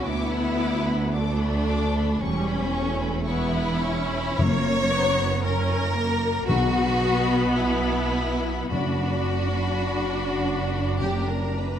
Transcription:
0.05 double bass section D2, cello section D2, viola section B3, violin section E4 D6
0.32 violin section B5
0.59 violin section D6
0.85 violin section B5
1.12 viola section A3, violin section D4 D6
1.40 violin section B5
1.67 violin section D6
1.94 violin section B5
2.21 double bass section E1, cello section E2, viola section G3, violin section C#4 C#6
2.48 violin section B5
2.73 violin section C#6
2.77 viola section A3
2.98 violin section B5
3.25 viola section B3, violin section E4 C#6
3.50 violin section B5
3.79 violin section C#6
3.83 viola section C#4
4.08 violin section B5
4.36 double bass section F#1, cello section F#2, timpani F#2, viola section A#3, violin section C#5 A#5
4.91 viola section B3
5.42 viola section C#4, violin section A#4 A#5
5.95 viola section A#3
6.47 double bass section B1, cello section B2, timpani B2, viola section B3, violin section F#4 B5
7.57 violin section E4
8.70 double bass section F#1, cello section F#2, timpani F#2, viola section D4, violin section F#4 B5
11.01 timpani F#2, violin section G4 A#5
11.28 violin section A#4
11.58 violin section B4

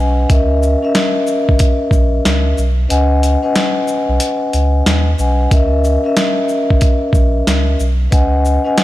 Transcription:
Already playing: sub bass B1, vibraphone C#4 B4 D#5
0.00 vibraphone F#5 G#5
0.29 sub bass C#2, vibraphone C#4 A#4 D#5 E5, kick, closed hi-hat
0.63 shaker
0.82 vibraphone C#4 A#4 D#5 E5
0.95 snare, closed hi-hat
1.27 shaker
1.49 sub bass G#1, kick
1.59 kick, closed hi-hat
1.91 sub bass A#1, kick, shaker
2.25 sub bass C#2, snare, closed hi-hat
2.58 sub bass B1, shaker
2.88 sub bass C#2, vibraphone C#4 B4 D#5 F#5 G#5, closed hi-hat
3.23 closed hi-hat, shaker
3.43 vibraphone C#4 B4 D#5 F#5 G#5
3.56 snare, closed hi-hat
3.88 shaker
4.09 sub bass B1
4.20 closed hi-hat
4.53 sub bass C#2, closed hi-hat, shaker
4.86 sub bass D#2, snare, closed hi-hat
5.18 sub bass B1, vibraphone C#4 B4 D#5 F#5 G#5, shaker
5.51 sub bass C#2, vibraphone C#4 A#4 D#5 E5, kick, closed hi-hat
5.84 shaker
6.04 vibraphone C#4 A#4 D#5 E5
6.17 snare, closed hi-hat
6.49 shaker
6.70 sub bass G#1, kick
6.81 kick, closed hi-hat
7.13 sub bass A#1, kick, shaker
7.47 sub bass C#2, snare, closed hi-hat
7.80 sub bass B1, shaker
8.10 sub bass C#2, vibraphone C#4 B4 D#5 F#5 G#5, kick, closed hi-hat
8.45 shaker
8.64 vibraphone C#4 B4 D#5 F#5 G#5
8.78 snare, closed hi-hat

